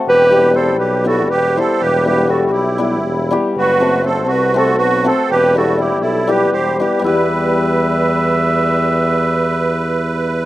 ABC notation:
X:1
M:7/8
L:1/16
Q:1/4=121
K:Em
V:1 name="Clarinet"
B4 c2 B2 A2 B2 c2 | B2 B2 A3/2 A/2 G6 z2 | B4 c2 B2 A2 B2 c2 | B2 A2 G2 A2 B2 c2 B2 |
e12- e2- | e12- e2 |]
V:2 name="Accordion"
G4 A2 G2 F2 G2 A2 | G2 G2 F3/2 F/2 E6 z2 | F4 A2 F2 F2 F2 A2 | G2 F2 E2 E2 G2 G2 G2 |
B12- B2- | B12- B2 |]
V:3 name="Hammered dulcimer"
z2 [G,B,EG]2 [G,B,EG]2 z2 [G,B,EG]2 z2 [G,B,EG]2 | z2 [G,B,EG]2 [G,B,EG]2 z2 [G,B,EG]2 z2 [G,B,EG]2 | z2 [A,CFA]2 [A,CFA]2 z2 [A,CFA]2 z2 [A,CFA]2 | z2 [G,B,EG]2 [G,B,EG]2 z2 [G,B,EG]2 z2 [G,B,EG]2 |
[G,B,EG]12- [G,B,EG]2- | [G,B,EG]12- [G,B,EG]2 |]
V:4 name="Tuba" clef=bass
E,,,6 B,,,4 E,,,4 | E,,,6 B,,,4 E,,,4 | F,,,6 C,,4 B,,,4 | E,,,6 B,,,4 E,,,4 |
E,,12- E,,2- | E,,12- E,,2 |]